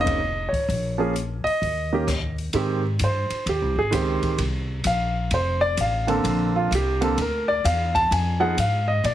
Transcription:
0.00 0.48 F1 medium
0.00 0.18 C#3 medium
0.00 0.18 A#3 medium
0.00 0.19 C4 medium
0.00 0.19 D#4 medium
0.00 0.51 D#5 loud
0.06 kick medium
0.06 ride medium
0.49 1.08 C#5 medium
0.53 muted upright bass stroke soft
0.53 kick soft
0.53 open hi-hat soft
0.68 1.41 A#1 medium
0.68 kick soft
0.68 open hi-hat soft
0.98 1.12 F3 medium
0.98 1.12 A#3 medium
0.98 1.13 C#4 medium
0.98 1.13 G#4 medium
1.16 closed hi-hat soft
1.44 2.33 D#5 medium
1.44 muted upright bass stroke soft
1.44 open hi-hat soft
1.62 2.50 D#2 medium
1.62 kick soft
1.62 open hi-hat soft
1.92 2.06 D#3 medium
1.92 2.06 A#3 medium
1.92 2.06 C#4 medium
1.92 2.07 G4 medium
2.07 kick medium
2.07 cross-stick medium
2.07 closed hi-hat soft
2.07 crash medium
2.38 open hi-hat soft
2.53 2.98 G#2 medium
2.53 2.81 D#3 medium
2.53 2.81 G#3 medium
2.53 2.81 C4 medium
2.53 2.81 G4 medium
2.53 kick soft
2.53 ride medium
2.99 3.28 G2 medium
2.99 kick soft
2.99 hi-hat pedal medium
2.99 ride medium
3.04 3.45 C5 medium
3.30 muted upright bass stroke soft
3.30 ride soft
3.46 3.62 D#2 medium
3.46 3.77 G4 medium
3.46 kick soft
3.46 ride medium
3.62 3.75 C2 medium
3.75 3.90 G#1 medium
3.75 3.93 G#4 medium
3.91 4.21 C#2 medium
3.91 4.38 D#3 medium
3.91 4.38 G#3 medium
3.91 4.39 C4 medium
3.91 4.39 G4 medium
3.91 4.37 C5 medium
3.91 kick soft
3.91 hi-hat pedal medium
3.91 ride medium
4.22 muted upright bass stroke soft
4.22 kick medium
4.22 ride soft
4.38 4.84 C2 medium
4.38 kick soft
4.38 ride medium
4.84 5.30 A#1 medium
4.84 5.29 F5 medium
4.84 kick soft
4.84 hi-hat pedal medium
4.84 ride medium
5.31 5.76 F1 medium
5.31 5.62 C5 medium
5.31 kick soft
5.31 ride medium
5.61 5.77 D5 loud
5.77 6.23 A1 medium
5.77 6.23 F5 medium
5.77 kick soft
5.77 hi-hat pedal medium
5.77 ride medium
6.07 6.67 D3 medium
6.07 6.67 A#3 medium
6.07 6.68 C4 medium
6.07 6.68 A4 medium
6.07 ride soft
6.24 6.69 A#1 medium
6.24 kick soft
6.24 ride medium
6.56 6.71 F4 medium
6.71 7.16 C2 medium
6.71 kick soft
6.71 hi-hat pedal medium
6.71 ride medium
6.75 7.03 G4 medium
7.01 7.15 D3 medium
7.01 7.16 A#3 medium
7.01 7.16 C4 medium
7.01 7.16 A4 medium
7.01 ride soft
7.18 7.62 D2 medium
7.18 7.49 A#4 medium
7.18 kick soft
7.18 ride medium
7.48 7.63 D5 medium
7.64 8.09 E2 medium
7.64 7.94 F5 medium
7.64 kick soft
7.64 hi-hat pedal medium
7.64 ride medium
7.95 8.10 A5 loud
7.95 kick soft
7.95 ride soft
8.11 8.56 F2 medium
8.11 8.41 G#5 medium
8.11 kick soft
8.11 ride medium
8.40 8.55 F3 medium
8.40 8.55 B3 medium
8.40 8.55 D#4 medium
8.40 8.56 G#4 medium
8.40 8.56 F#5 medium
8.57 9.02 G#2 medium
8.57 8.88 F5 medium
8.57 kick soft
8.57 hi-hat pedal medium
8.57 ride medium
8.88 9.03 D#5 medium
9.03 9.14 A#2 medium
9.03 9.14 D5 medium
9.03 kick soft
9.03 ride medium

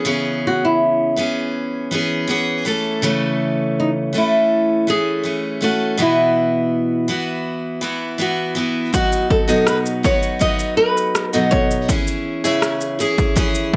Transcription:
0.00 0.47 G#4 medium
0.05 1.17 C#3 medium
0.05 1.16 E3 medium
0.05 1.16 B3 medium
0.05 1.18 C#4 medium
0.05 1.18 G#4 medium
0.47 0.64 F#4 medium
0.65 1.33 E4 medium
1.16 1.91 E3 soft
1.16 1.91 B3 medium
1.16 1.93 C#4 medium
1.16 1.92 G#4 medium
1.91 2.26 E3 medium
1.91 2.28 B3 medium
1.91 2.29 C#4 medium
1.91 2.29 G#4 medium
2.27 2.64 E3 medium
2.27 2.66 B3 medium
2.27 2.66 C#4 medium
2.27 2.67 G#4 medium
2.65 3.02 E3 medium
2.65 3.03 A3 medium
2.65 3.03 C#4 medium
2.65 3.03 A4 medium
3.02 4.13 C#3 medium
3.02 4.12 E3 medium
3.02 4.13 A3 medium
3.02 4.14 C#4 medium
3.02 4.14 A4 medium
3.80 3.89 D#4 medium
4.13 4.87 E3 soft
4.13 4.87 A3 medium
4.13 4.87 C#4 medium
4.13 4.89 A4 medium
4.18 4.92 E4 medium
4.87 5.22 E3 soft
4.87 5.24 A3 medium
4.87 5.24 C#4 medium
4.87 5.59 G#4 medium
5.24 5.59 E3 medium
5.24 5.61 A3 soft
5.24 5.62 C#4 medium
5.61 5.97 E3 medium
5.61 5.98 A3 medium
5.61 5.99 C#4 medium
5.61 5.97 F#4 medium
5.61 5.99 A4 medium
5.97 7.09 B2 medium
5.97 7.07 E3 medium
5.97 7.09 B3 medium
5.97 7.09 E4 medium
5.97 7.10 F#4 medium
6.02 8.18 E4 medium
7.08 7.80 E3 medium
7.08 7.82 B3 medium
7.08 7.81 E4 medium
7.08 7.83 F#4 medium
7.81 8.17 E3 medium
7.81 8.18 B3 medium
7.81 8.19 E4 medium
7.81 8.20 F#4 medium
8.18 8.54 E3 medium
8.18 8.55 B3 medium
8.18 8.56 E4 medium
8.18 8.57 F#4 medium
8.55 8.92 E3 medium
8.55 8.92 B3 medium
8.55 8.94 E4 medium
8.55 8.94 F#4 medium
8.93 9.48 F#3 soft
8.93 9.47 B3 medium
8.93 9.47 D#4 medium
8.93 9.30 F#4 medium
8.93 9.46 F#4 medium
8.93 kick medium
8.93 shaker medium
9.12 shaker soft
9.30 9.68 A4 medium
9.30 kick medium
9.48 10.05 B2 soft
9.48 10.02 F#3 medium
9.48 10.03 B3 medium
9.48 10.04 D#4 medium
9.48 10.04 F#4 medium
9.48 shaker soft
9.67 9.78 B4 medium
9.67 cross-stick loud
9.67 shaker medium
9.86 shaker soft
10.03 10.38 F#3 soft
10.03 10.39 B3 soft
10.03 10.40 D#4 medium
10.03 10.41 F#4 medium
10.03 10.41 C#5 medium
10.03 kick medium
10.03 shaker soft
10.23 shaker soft
10.39 11.33 F#3 soft
10.39 11.33 B3 medium
10.39 11.33 D#4 medium
10.39 11.32 F#4 medium
10.39 10.76 D#5 loud
10.39 kick medium
10.39 shaker medium
10.59 shaker medium
10.77 11.34 B4 medium
10.97 cross-stick soft
10.97 shaker soft
11.15 cross-stick loud
11.15 shaker medium
11.33 11.90 B2 medium
11.33 11.88 F#3 medium
11.33 11.89 B3 medium
11.33 11.89 D#4 medium
11.33 11.89 F#4 medium
11.33 11.51 A4 medium
11.33 shaker soft
11.51 13.04 C#5 loud
11.51 kick medium
11.71 shaker soft
11.88 12.44 E3 medium
11.88 12.44 C#4 medium
11.88 12.44 E4 medium
11.88 12.43 G#4 medium
11.88 kick medium
11.88 shaker medium
12.07 shaker medium
12.44 13.01 C#3 medium
12.44 12.98 E3 medium
12.44 12.99 C#4 medium
12.44 12.99 E4 medium
12.44 13.00 G#4 medium
12.44 shaker soft
12.62 cross-stick loud
12.62 shaker medium
12.81 shaker soft
12.99 13.34 E3 medium
12.99 13.35 C#4 medium
12.99 13.37 E4 medium
12.99 13.36 G#4 medium
12.99 13.38 G#4 medium
12.99 shaker soft
13.18 kick medium
13.18 shaker soft
13.36 13.77 E3 medium
13.36 13.77 C#4 medium
13.36 13.77 E4 medium
13.36 13.77 G#4 medium
13.36 kick medium
13.36 shaker medium
13.55 shaker medium

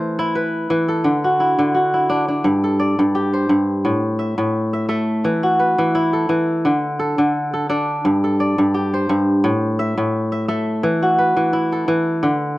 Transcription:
0.00 0.69 E3 medium
0.00 1.29 A3 medium
0.00 0.80 A4 medium
0.00 0.41 C5 medium
0.19 1.40 E4 medium
0.35 1.58 B4 medium
0.70 1.10 E3 medium
0.88 2.20 A4 medium
1.04 1.57 D3 medium
1.24 1.74 F#4 medium
1.40 1.93 E4 medium
1.59 2.50 D3 medium
1.75 2.50 F#4 medium
1.94 3.50 E4 medium
2.09 2.28 D4 medium
2.28 3.96 D4 medium
2.44 2.98 G2 medium
2.64 3.95 A4 medium
2.80 3.90 D5 medium
2.99 3.48 G2 medium
3.15 4.56 G4 medium
3.33 4.52 C5 medium
3.49 3.90 G2 medium
3.85 4.37 A2 medium
4.19 4.73 E5 medium
4.38 5.30 A2 medium
4.73 4.88 E5 medium
4.89 6.88 A3 medium
4.89 5.92 E5 medium
5.24 5.77 E3 medium
5.43 6.89 F#4 medium
5.59 6.82 B4 medium
5.78 6.28 E3 medium
5.95 7.52 E4 medium
6.13 6.99 A4 medium
6.29 6.69 E3 medium
6.65 7.17 D3 medium
6.99 7.53 A4 medium
7.18 8.09 D3 medium
7.54 7.69 A4 medium
7.69 9.37 D4 medium
7.69 8.23 A4 medium
8.05 8.57 G2 medium
8.24 9.56 A4 medium
8.40 9.51 D5 medium
8.58 9.08 G2 medium
8.74 10.16 G4 medium
8.94 10.12 C5 medium
9.09 9.49 G2 medium
9.44 9.96 A2 medium
9.79 10.32 E5 medium
9.98 10.88 A2 medium
10.32 10.48 E5 medium
10.48 12.48 A3 medium
10.48 11.52 E5 medium
10.83 11.35 E3 medium
11.02 12.49 F#4 medium
11.18 12.41 B4 medium
11.37 11.87 E3 medium
11.53 12.58 E4 medium
11.72 12.57 A4 medium
11.88 12.28 E3 medium
12.23 12.58 D3 medium

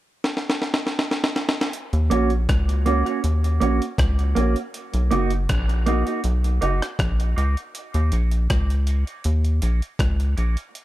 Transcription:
0.24 snare medium
0.37 snare medium
0.50 snare medium
0.62 snare medium
0.74 snare medium
0.87 snare medium
0.99 snare medium
1.11 snare medium
1.24 snare medium
1.36 snare medium
1.49 snare medium
1.61 snare medium
1.73 closed hi-hat medium
1.93 2.10 D#2 medium
1.93 closed hi-hat medium
2.10 2.47 A#1 medium
2.10 2.29 A#3 medium
2.10 2.30 C#4 medium
2.10 2.30 F#4 medium
2.10 closed hi-hat medium
2.30 closed hi-hat soft
2.49 3.03 C#2 medium
2.49 kick loud
2.49 cross-stick loud
2.49 closed hi-hat medium
2.69 closed hi-hat soft
2.86 3.05 A#3 medium
2.86 3.05 C#4 medium
2.86 3.04 F#4 medium
2.86 closed hi-hat medium
3.05 3.20 A#3 soft
3.05 3.19 C#4 medium
3.05 3.19 F#4 medium
3.05 closed hi-hat soft
3.24 3.60 D#2 medium
3.24 closed hi-hat medium
3.44 closed hi-hat medium
3.60 3.80 A#1 medium
3.60 3.79 A#3 medium
3.60 3.80 C#4 medium
3.60 3.80 F#4 medium
3.60 closed hi-hat medium
3.82 closed hi-hat medium
3.98 4.34 C#2 loud
3.98 kick loud
3.98 cross-stick loud
3.98 closed hi-hat medium
4.19 closed hi-hat soft
4.35 4.55 A#1 medium
4.35 4.54 A#3 medium
4.35 4.55 C#4 medium
4.35 4.55 F#4 medium
4.35 closed hi-hat medium
4.56 closed hi-hat soft
4.74 closed hi-hat medium
4.94 5.11 B1 medium
4.94 closed hi-hat medium
5.11 5.48 F#1 medium
5.11 5.30 A#3 medium
5.11 5.30 D#4 medium
5.11 5.30 F#4 medium
5.11 closed hi-hat medium
5.30 closed hi-hat soft
5.49 6.04 A#1 loud
5.49 kick loud
5.49 cross-stick loud
5.49 closed hi-hat medium
5.69 closed hi-hat soft
5.86 6.05 A#3 medium
5.86 6.05 D#4 medium
5.86 6.05 F#4 medium
5.86 closed hi-hat medium
6.06 6.20 A#3 soft
6.06 6.20 D#4 medium
6.06 6.19 F#4 medium
6.06 closed hi-hat soft
6.24 6.60 B1 loud
6.24 closed hi-hat medium
6.44 closed hi-hat soft
6.61 6.81 F#1 medium
6.61 6.80 A#3 medium
6.61 6.80 D#4 medium
6.61 6.81 F#4 medium
6.61 closed hi-hat medium
6.82 cross-stick medium
6.82 closed hi-hat medium
6.99 7.35 A#1 medium
6.99 kick loud
6.99 cross-stick loud
6.99 closed hi-hat medium
7.20 closed hi-hat soft
7.36 7.56 C#2 medium
7.36 7.55 A#3 medium
7.36 7.56 D#4 medium
7.36 7.56 F#4 loud
7.36 closed hi-hat medium
7.57 closed hi-hat soft
7.75 closed hi-hat medium
7.94 8.11 D#2 loud
7.94 closed hi-hat medium
8.12 8.48 A#1 medium
8.12 8.30 A#3 medium
8.12 8.31 C#4 medium
8.12 8.31 F#4 medium
8.12 closed hi-hat medium
8.31 closed hi-hat soft
8.50 9.04 C#2 medium
8.50 kick loud
8.50 cross-stick loud
8.50 closed hi-hat medium
8.70 closed hi-hat medium
8.87 9.05 A#3 medium
8.87 9.06 C#4 medium
8.87 9.06 F#4 medium
8.87 closed hi-hat medium
9.07 9.21 A#3 medium
9.07 9.20 C#4 medium
9.07 9.20 F#4 medium
9.07 closed hi-hat soft
9.24 9.61 D#2 medium
9.24 closed hi-hat medium
9.45 closed hi-hat medium
9.62 9.81 A#1 medium
9.62 9.81 A#3 medium
9.62 9.81 C#4 medium
9.62 9.81 F#4 medium
9.62 closed hi-hat medium
9.82 closed hi-hat medium
9.99 10.35 C#2 loud
9.99 kick loud
9.99 cross-stick loud
9.99 closed hi-hat medium
10.20 closed hi-hat soft
10.37 10.56 A#1 medium
10.37 10.56 A#3 medium
10.37 10.56 C#4 medium
10.37 10.56 F#4 medium
10.37 closed hi-hat medium
10.57 closed hi-hat soft
10.75 closed hi-hat medium

